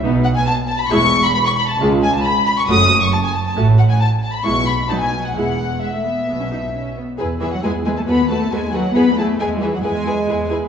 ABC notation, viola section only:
X:1
M:4/4
L:1/16
Q:1/4=136
K:E
V:1 name="Viola section"
[B,D]2 z6 [G,E]2 z6 | [G,^E]2 z6 [A,F]2 z6 | [A,F]2 z6 [G,E]2 z2 [F,D]2 z2 | [G,E]2 z2 G, A, B,2 B, C D2 C2 B,2 |
[EG]2 [EG]2 [EG]2 [EG]2 F2 F2 F2 F2 | [EG]2 [EG]2 [EG]2 [EG]2 [EG]2 [EG]2 [EG]2 [EG]2 |]